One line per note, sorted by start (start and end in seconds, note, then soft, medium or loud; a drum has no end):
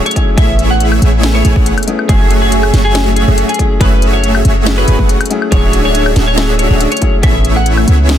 0.00 0.15 F#3 medium
0.00 0.16 A3 medium
0.00 0.16 C#4 medium
0.00 0.17 E4 medium
0.00 0.17 G#4 loud
0.00 0.40 C#5 medium
0.06 0.29 C#5 loud
0.06 closed hi-hat medium
0.11 0.35 F#3 medium
0.11 closed hi-hat medium
0.16 0.34 A3 medium
0.16 0.35 C#4 medium
0.16 0.35 E4 medium
0.16 0.36 G#4 loud
0.16 kick medium
0.16 closed hi-hat medium
0.36 1.00 A1 medium
0.36 1.20 A3 medium
0.36 0.99 A3 medium
0.36 1.20 B3 medium
0.36 1.21 C#4 medium
0.36 0.99 E4 medium
0.36 1.21 E4 medium
0.36 0.99 G#4 medium
0.36 0.99 C#5 medium
0.36 0.99 E5 loud
0.36 0.61 E5 medium
0.36 kick loud
0.36 closed hi-hat medium
0.40 1.22 G#4 loud
0.59 closed hi-hat medium
0.70 0.86 F#5 medium
0.80 closed hi-hat medium
0.92 high woodblock medium
1.02 1.43 A1 loud
1.02 1.43 A3 loud
1.02 1.43 E4 medium
1.02 1.43 G#4 medium
1.02 1.43 C#5 medium
1.02 1.43 E5 loud
1.02 closed hi-hat medium
1.21 1.84 A3 medium
1.21 1.85 B3 medium
1.21 1.85 C#4 medium
1.21 1.86 E4 medium
1.21 1.86 G#4 loud
1.21 snare loud
1.21 closed hi-hat medium
1.35 1.65 C#5 loud
1.45 1.54 A1 loud
1.45 1.53 A3 medium
1.45 1.53 E4 medium
1.45 1.53 G#4 medium
1.45 1.53 C#5 medium
1.45 1.53 G#5 medium
1.45 closed hi-hat medium
1.56 1.72 A1 loud
1.56 1.74 A3 medium
1.56 1.74 E4 medium
1.56 1.74 G#4 medium
1.56 1.74 C#5 medium
1.56 1.74 F#5 medium
1.56 kick medium
1.66 closed hi-hat medium
1.78 closed hi-hat soft
1.78 high woodblock medium
1.83 closed hi-hat medium
1.87 2.06 A3 medium
1.87 2.06 B3 medium
1.87 2.07 C#4 medium
1.87 2.07 E4 medium
1.87 2.07 G#4 loud
1.87 closed hi-hat medium
1.99 high woodblock medium
2.07 2.71 F#1 medium
2.07 2.91 F#3 medium
2.07 2.92 A3 medium
2.07 2.71 A3 medium
2.07 2.92 C#4 medium
2.07 2.93 E4 medium
2.07 2.71 F#4 medium
2.07 2.33 G#4 loud
2.07 2.71 G#4 medium
2.07 2.71 C#5 medium
2.07 2.71 E5 medium
2.07 kick loud
2.07 closed hi-hat medium
2.11 2.94 G#4 medium
2.31 closed hi-hat medium
2.42 2.73 G#4 medium
2.52 closed hi-hat medium
2.63 high woodblock medium
2.73 3.25 F#1 loud
2.73 3.25 A3 loud
2.73 3.25 F#4 medium
2.73 3.25 G#4 medium
2.73 3.25 C#5 loud
2.73 3.25 E5 loud
2.73 snare medium
2.73 closed hi-hat medium
2.85 3.08 G#4 medium
2.93 3.56 F#3 medium
2.93 3.56 A3 medium
2.93 3.57 C#4 medium
2.93 3.57 E4 medium
2.93 3.58 G#4 loud
2.93 snare loud
2.93 closed hi-hat medium
3.16 3.40 G#4 medium
3.16 closed hi-hat medium
3.28 3.44 F#1 loud
3.28 3.46 A3 medium
3.28 3.46 F#4 medium
3.28 3.46 G#4 medium
3.28 3.46 C#5 medium
3.28 3.46 E5 loud
3.38 closed hi-hat medium
3.49 3.72 G#4 loud
3.49 closed hi-hat medium
3.54 closed hi-hat medium
3.58 3.77 F#3 medium
3.58 3.78 A3 medium
3.58 3.78 C#4 medium
3.58 3.78 E4 medium
3.58 3.79 G#4 loud
3.58 kick medium
3.58 closed hi-hat medium
3.79 4.43 F#1 medium
3.79 4.63 F#3 medium
3.79 4.63 A3 medium
3.79 4.42 A3 medium
3.79 4.64 C#4 medium
3.79 4.64 E4 medium
3.79 4.42 F#4 medium
3.79 4.42 G#4 medium
3.79 4.65 G#4 medium
3.79 4.04 B4 loud
3.79 4.42 C#5 medium
3.79 4.43 E5 loud
3.79 kick loud
3.79 closed hi-hat medium
4.02 closed hi-hat medium
4.13 4.29 C#5 medium
4.24 closed hi-hat medium
4.35 high woodblock medium
4.45 4.86 F#1 loud
4.45 4.86 A3 loud
4.45 4.86 F#4 medium
4.45 4.86 G#4 medium
4.45 4.86 C#5 medium
4.45 4.86 E5 loud
4.45 closed hi-hat medium
4.64 5.27 F#3 medium
4.64 5.28 A3 medium
4.64 5.28 C#4 medium
4.64 5.29 E4 medium
4.64 snare loud
4.64 closed hi-hat medium
4.68 5.29 G#4 loud
4.78 5.08 B4 loud
4.88 4.97 F#1 loud
4.88 4.96 A3 medium
4.88 4.96 F#4 medium
4.88 4.96 G#4 medium
4.88 4.96 C#5 medium
4.88 4.96 G#5 medium
4.88 closed hi-hat medium
4.99 5.15 F#1 loud
4.99 5.17 A3 medium
4.99 5.17 F#4 medium
4.99 5.17 G#4 medium
4.99 5.17 C#5 medium
4.99 5.17 F#5 medium
4.99 kick medium
5.09 closed hi-hat medium
5.21 closed hi-hat medium
5.21 high woodblock medium
5.25 closed hi-hat medium
5.30 5.48 F#3 medium
5.30 5.49 A3 medium
5.30 5.50 C#4 medium
5.30 5.50 E4 medium
5.30 5.50 G#4 loud
5.30 closed hi-hat medium
5.42 high woodblock medium
5.50 6.14 D1 loud
5.50 6.34 F#3 medium
5.50 6.35 A3 medium
5.50 6.14 D4 medium
5.50 6.36 E4 medium
5.50 6.14 F#4 medium
5.50 6.14 G#4 medium
5.50 5.76 C#5 loud
5.50 6.35 C#5 medium
5.50 6.14 C#5 medium
5.50 6.14 E5 medium
5.50 kick loud
5.50 closed hi-hat medium
5.54 6.36 G#4 loud
5.73 closed hi-hat medium
5.85 6.16 C#5 medium
5.95 closed hi-hat medium
6.06 high woodblock medium
6.16 6.68 D1 loud
6.16 6.68 D4 loud
6.16 6.68 F#4 medium
6.16 6.68 G#4 medium
6.16 6.68 C#5 medium
6.16 6.68 E5 loud
6.16 snare medium
6.16 closed hi-hat medium
6.27 6.51 C#5 medium
6.36 6.99 F#3 medium
6.36 6.99 A3 medium
6.36 7.00 C#4 medium
6.36 7.00 E4 medium
6.36 7.01 G#4 loud
6.36 snare loud
6.36 closed hi-hat medium
6.59 6.83 C#5 medium
6.59 closed hi-hat medium
6.70 6.86 D1 loud
6.70 6.89 D4 medium
6.70 6.89 F#4 medium
6.70 6.89 G#4 medium
6.70 6.89 C#5 medium
6.70 6.89 E5 loud
6.80 closed hi-hat medium
6.92 7.15 C#5 loud
6.92 closed hi-hat medium
6.97 closed hi-hat medium
7.01 7.21 F#3 medium
7.01 7.20 A3 medium
7.01 7.21 C#4 medium
7.01 7.21 E4 medium
7.01 7.22 G#4 loud
7.01 kick medium
7.01 closed hi-hat medium
7.22 7.86 A1 loud
7.22 8.06 A3 medium
7.22 7.85 A3 medium
7.22 8.06 B3 medium
7.22 8.07 C#4 medium
7.22 7.85 E4 medium
7.22 8.07 E4 medium
7.22 7.85 G#4 medium
7.22 8.08 G#4 loud
7.22 7.85 C#5 medium
7.22 7.85 E5 loud
7.22 7.47 E5 loud
7.22 kick loud
7.22 closed hi-hat medium
7.45 closed hi-hat medium
7.56 7.72 F#5 medium
7.66 closed hi-hat medium
7.78 high woodblock medium
7.88 8.18 C#2 loud
7.88 8.18 B3 loud
7.88 8.18 E4 medium
7.88 8.18 G#4 medium
7.88 8.18 C#5 medium
7.88 8.18 E5 loud
7.88 closed hi-hat medium
8.07 8.18 G#3 medium
8.07 8.18 B3 medium
8.07 8.18 C#4 medium
8.07 8.18 E4 medium
8.07 snare loud
8.07 closed hi-hat medium
8.11 8.18 G#4 loud